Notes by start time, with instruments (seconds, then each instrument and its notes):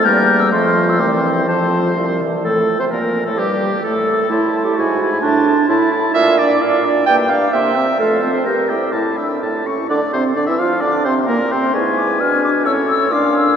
0.04 bassoon E2, french horn G3, clarinet A#3, oboe A#4, flute G6
0.40 flute E6
0.51 bassoon F2, french horn F3, clarinet A3, oboe C5, flute C6
0.89 flute E6
0.99 bassoon C2, french horn E3, clarinet C4, flute D6
1.23 flute C6
1.47 bassoon F2, french horn F3, clarinet C4, oboe C5, flute A5
1.96 bassoon C2, french horn F3
2.21 french horn E3
2.44 bassoon A2, french horn A3, clarinet A4, oboe A4, flute A4
2.79 bassoon C3, french horn C4, oboe C5, clarinet C5, flute C5
2.91 bassoon A#2, french horn A#3, flute A#4, clarinet A#4, oboe A#4
3.26 bassoon A2, french horn A3, oboe A4, clarinet A4, flute A4
3.37 bassoon G2, french horn G3, flute G4, clarinet G4, oboe G4
3.83 bassoon A2, french horn A3, clarinet A4, flute A4, oboe A4
4.30 bassoon A2, clarinet E4, french horn E4, oboe A5, flute C6
4.55 french horn E4, oboe A5, flute C6
4.65 clarinet G4
4.77 bassoon G#2, french horn E4, clarinet F#4, oboe G#5, flute B5
4.99 french horn E4, oboe G#5, flute B5
5.12 clarinet E4
5.22 bassoon A2, clarinet D4, french horn E4, oboe A5, flute C6
5.46 french horn E4, oboe A5, flute C6
5.68 bassoon A2, clarinet E4, french horn E4, oboe A5, flute C6
5.92 french horn E4, oboe A5, flute C6
6.14 bassoon A#2, french horn F4, clarinet E5, oboe F5, flute D6
6.38 french horn D4, clarinet D5, oboe D5, flute A#5
6.59 bassoon A#2, french horn F4, oboe F5, flute D6
6.83 french horn D4, oboe D5, flute A#5
7.06 bassoon G2, french horn A#3, clarinet G5, oboe G5, flute D6
7.29 french horn D4, oboe D5, clarinet F5, flute A#5
7.52 bassoon C3, french horn A#3, clarinet E5, oboe G5, flute C6
7.76 french horn C4, oboe E5, flute A#5
7.98 bassoon F2, french horn A3, clarinet A4, oboe F5, flute C6
8.22 french horn C4, oboe C5, flute A5
8.34 clarinet C5
8.45 bassoon G2, french horn G4, clarinet A#4, oboe A#5, flute G6
8.69 french horn E4, clarinet G4, oboe G5, flute E6
8.92 bassoon A2, clarinet E4, french horn E4, oboe A5, flute D6
9.17 french horn D4, oboe E5, flute E6
9.42 bassoon A2, french horn E4, oboe A5, flute E6
9.65 french horn C#4, oboe C#6, flute C#6
9.89 bassoon D3, french horn D4, clarinet D4, oboe D5, flute D6
10.13 bassoon C3, clarinet C4, french horn C4, oboe C5, flute C6
10.35 bassoon D3, clarinet D4, french horn D4, oboe D5, flute D6
10.47 bassoon E3, clarinet E4, french horn E4, oboe E5, flute E6
10.59 bassoon F3, clarinet F4, french horn F4, oboe F5, flute F6
10.81 bassoon D3, clarinet D4, french horn D4, oboe D5
10.86 flute D6
11.05 bassoon C3, clarinet C4, french horn C4, oboe C5, flute C6
11.27 bassoon A#2, clarinet A#3, french horn A#3, oboe A#4, flute A#5
11.50 bassoon C3, clarinet C4, french horn C4, oboe C5, flute C6
11.73 bassoon G#2, french horn E4, clarinet B4, oboe G#5, flute C#6
11.98 flute D6
12.20 bassoon B2, french horn D4, flute F6
12.44 flute D6
12.65 bassoon A2, french horn C#4, clarinet A4, oboe C#5, flute E6
12.89 flute E6
13.10 bassoon A#2, french horn D4, clarinet F4, oboe F5, flute D6
13.35 flute E6